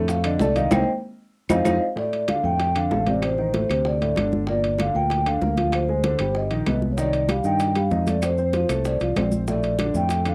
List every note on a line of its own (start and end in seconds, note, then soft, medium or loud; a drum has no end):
0.00 0.37 F2 medium
0.00 0.19 A2 medium
0.00 0.19 A3 medium
0.00 0.19 A4 medium
0.08 0.25 F5 medium
0.08 high bongo medium
0.08 high conga soft
0.08 high timbale medium
0.08 maracas medium
0.24 0.38 D3 medium
0.24 0.37 D4 medium
0.24 0.38 D5 medium
0.24 0.40 D#5 medium
0.24 high bongo soft
0.24 high conga soft
0.24 high timbale loud
0.24 claves medium
0.39 0.69 C2 medium
0.39 0.53 A3 medium
0.39 0.53 A4 medium
0.39 0.56 D5 loud
0.39 0.54 A5 medium
0.39 high bongo medium
0.39 low bongo medium
0.39 high conga medium
0.39 maracas medium
0.55 0.69 D#3 medium
0.55 0.69 D#4 medium
0.55 0.69 D#5 medium
0.55 0.71 F5 loud
0.55 high bongo soft
0.55 high conga medium
0.55 high timbale medium
0.55 maracas soft
0.71 0.83 C2 loud
0.71 0.81 A#3 loud
0.71 0.82 C4 loud
0.71 0.82 D#4 loud
0.71 0.82 C5 loud
0.71 0.82 D#5 loud
0.71 0.82 G5 loud
0.71 low bongo loud
0.71 high conga loud
0.71 high timbale loud
0.71 claves loud
0.71 maracas medium
1.49 1.61 F2 loud
1.49 1.60 C4 loud
1.49 1.60 D#4 loud
1.49 1.60 F4 medium
1.49 1.60 C5 loud
1.49 1.60 D#5 medium
1.49 1.60 F5 loud
1.49 low bongo loud
1.49 high conga loud
1.49 high timbale loud
1.49 claves loud
1.49 maracas loud
1.65 1.77 F2 loud
1.65 1.75 C4 loud
1.65 1.75 D#4 loud
1.65 1.75 F4 loud
1.65 1.76 C5 loud
1.65 1.76 D#5 loud
1.65 1.76 F5 loud
1.65 low bongo medium
1.65 high conga loud
1.65 high timbale loud
1.65 claves loud
1.65 maracas loud
1.96 2.22 A2 medium
1.96 2.22 A3 medium
1.96 2.27 D5 loud
1.96 high bongo medium
1.96 high conga soft
2.13 high conga soft
2.13 high timbale medium
2.28 2.41 D3 medium
2.28 2.41 D4 medium
2.28 2.45 F5 loud
2.28 high bongo medium
2.28 high conga medium
2.28 high timbale medium
2.28 claves medium
2.43 2.88 F2 medium
2.43 2.69 A2 medium
2.43 2.69 A3 medium
2.43 2.77 G5 loud
2.43 high bongo soft
2.60 high bongo medium
2.60 high conga soft
2.60 high timbale medium
2.75 2.88 D3 medium
2.75 2.88 D4 medium
2.75 3.09 F5 medium
2.75 high bongo soft
2.75 high conga soft
2.75 high timbale medium
2.75 claves medium
2.91 3.64 A1 medium
2.91 3.04 A3 medium
2.91 3.04 A4 medium
2.91 high bongo soft
2.91 low bongo medium
2.91 high conga medium
2.91 low timbale medium
3.06 3.32 C3 medium
3.06 3.33 C4 medium
3.06 3.15 D5 medium
3.06 high bongo soft
3.06 high conga medium
3.06 high timbale medium
3.22 3.39 C5 loud
3.22 high bongo medium
3.22 high conga soft
3.22 high timbale medium
3.22 claves medium
3.38 3.51 D#3 medium
3.38 3.51 D#4 medium
3.38 3.47 C5 medium
3.38 high conga soft
3.54 3.67 A2 medium
3.54 3.67 A3 medium
3.54 3.84 C5 medium
3.54 high bongo medium
3.54 high conga medium
3.54 high timbale medium
3.69 4.13 D2 medium
3.69 3.95 C3 medium
3.69 3.96 C4 medium
3.69 high bongo soft
3.69 high conga soft
3.69 high timbale medium
3.69 claves medium
3.85 4.30 D5 medium
3.85 high bongo medium
3.85 high conga soft
4.01 4.14 A2 medium
4.01 4.14 A3 medium
4.01 high bongo soft
4.01 high conga soft
4.01 high timbale medium
4.16 4.89 G1 medium
4.16 4.42 D3 medium
4.16 4.43 D4 medium
4.16 high bongo soft
4.16 low bongo medium
4.16 high conga medium
4.16 high timbale medium
4.16 claves medium
4.32 high bongo soft
4.32 high conga medium
4.47 4.74 A#2 medium
4.47 4.74 A#3 medium
4.47 4.78 D5 loud
4.47 high bongo medium
4.47 high conga soft
4.64 high conga soft
4.64 high timbale medium
4.78 4.92 D3 medium
4.78 4.92 D4 medium
4.78 4.87 F5 medium
4.78 high bongo medium
4.78 high conga medium
4.78 high timbale medium
4.78 claves medium
4.95 5.38 D2 medium
4.95 5.20 A#2 medium
4.95 5.21 A#3 medium
4.95 5.24 G5 loud
4.95 high bongo soft
5.10 high bongo medium
5.10 high conga soft
5.10 high timbale medium
5.26 5.39 D3 medium
5.26 5.39 D4 medium
5.26 5.75 F5 medium
5.26 high bongo soft
5.26 high conga soft
5.26 high timbale medium
5.26 claves medium
5.41 6.14 D2 medium
5.41 5.55 A#3 medium
5.41 5.55 A#4 medium
5.41 high bongo soft
5.41 low bongo medium
5.41 high conga medium
5.57 5.83 F3 medium
5.57 5.83 F4 medium
5.57 high bongo soft
5.57 high conga medium
5.57 high timbale medium
5.72 6.03 C5 medium
5.72 high bongo medium
5.72 high conga soft
5.72 high timbale medium
5.72 claves medium
5.88 6.02 G#3 medium
5.88 6.02 G#4 medium
5.88 high conga soft
6.04 6.17 D3 medium
6.04 6.18 D4 medium
6.04 6.34 C5 medium
6.04 high bongo medium
6.04 high conga medium
6.04 high timbale medium
6.19 6.49 G1 medium
6.19 6.46 G3 medium
6.19 6.46 G4 medium
6.19 high bongo soft
6.19 high conga soft
6.19 high timbale loud
6.19 claves medium
6.35 6.80 D#5 medium
6.35 high bongo medium
6.35 high conga soft
6.51 6.66 A#1 medium
6.51 6.64 D#3 medium
6.51 6.64 D#4 medium
6.51 high bongo soft
6.51 high conga soft
6.51 high timbale medium
6.66 7.39 C2 medium
6.66 6.92 B3 medium
6.66 6.92 B4 medium
6.66 high bongo soft
6.66 low bongo medium
6.66 high conga medium
6.66 high timbale medium
6.66 claves medium
6.82 high bongo soft
6.82 high conga medium
6.92 6.99 C#5 medium
6.97 7.23 D#3 medium
6.97 7.23 D#4 medium
6.97 7.28 D5 medium
6.97 high bongo medium
6.97 high conga soft
6.97 maracas medium
7.13 high conga soft
7.13 high timbale medium
7.13 maracas soft
7.29 7.42 G3 medium
7.29 7.42 G4 medium
7.29 7.46 F5 medium
7.29 high bongo medium
7.29 high conga medium
7.29 high timbale medium
7.29 claves medium
7.29 maracas soft
7.44 7.88 G2 medium
7.44 7.70 D#3 medium
7.44 7.71 D#4 medium
7.44 7.78 G5 loud
7.44 high bongo soft
7.44 maracas medium
7.59 high bongo medium
7.59 high conga soft
7.59 high timbale medium
7.59 maracas medium
7.75 7.89 G3 medium
7.75 7.89 G4 medium
7.75 8.09 F5 medium
7.75 high bongo soft
7.75 high conga soft
7.75 high timbale medium
7.75 claves medium
7.75 maracas soft
7.91 8.64 F2 medium
7.91 8.04 D#4 medium
7.91 8.04 D#5 medium
7.91 high bongo soft
7.91 low bongo medium
7.91 high conga medium
7.91 maracas soft
8.07 8.33 A3 medium
8.07 8.33 A4 medium
8.07 8.23 D5 medium
8.07 high bongo soft
8.07 high conga medium
8.07 high timbale medium
8.07 maracas medium
8.22 8.55 C5 loud
8.22 high bongo medium
8.22 high conga soft
8.22 high timbale medium
8.22 claves medium
8.22 maracas medium
8.38 8.51 C4 medium
8.38 8.51 C5 medium
8.38 high conga soft
8.38 maracas soft
8.53 8.67 F3 medium
8.53 8.67 F4 medium
8.53 8.78 C5 medium
8.53 high bongo medium
8.53 high conga medium
8.53 high timbale medium
8.53 maracas soft
8.69 8.99 C2 medium
8.69 8.95 A3 medium
8.69 8.96 A4 medium
8.69 high bongo soft
8.69 high conga soft
8.69 high timbale medium
8.69 claves medium
8.69 maracas medium
8.79 8.86 C5 medium
8.85 9.30 D5 medium
8.85 high bongo medium
8.85 high conga soft
8.85 maracas medium
9.00 9.16 C2 medium
9.00 9.14 F3 medium
9.00 9.14 F4 medium
9.00 high bongo soft
9.00 high conga soft
9.00 high timbale medium
9.00 maracas soft
9.16 9.89 A#1 medium
9.16 9.42 C4 medium
9.16 9.43 C5 medium
9.16 high bongo soft
9.16 low bongo medium
9.16 high conga medium
9.16 high timbale medium
9.16 low timbale medium
9.16 claves medium
9.16 maracas soft
9.32 high bongo soft
9.32 high conga medium
9.32 maracas medium
9.48 9.74 A2 medium
9.48 9.74 A3 medium
9.48 9.97 D5 medium
9.48 high bongo medium
9.48 high conga soft
9.48 maracas medium
9.63 high conga soft
9.63 high timbale medium
9.63 maracas soft
9.79 9.92 D3 medium
9.79 9.92 D4 medium
9.79 high bongo medium
9.79 high conga medium
9.79 high timbale loud
9.79 claves medium
9.79 maracas soft
9.94 10.35 F2 medium
9.94 10.20 A2 medium
9.94 10.21 A3 medium
9.94 10.25 G5 medium
9.94 high bongo soft
9.94 maracas medium
10.09 high bongo medium
10.09 high conga soft
10.09 high timbale medium
10.09 maracas medium
10.24 10.35 D3 medium
10.24 10.35 D4 medium
10.24 high bongo soft
10.24 high conga soft
10.24 high timbale medium
10.24 claves medium
10.24 maracas soft
10.29 10.35 F5 medium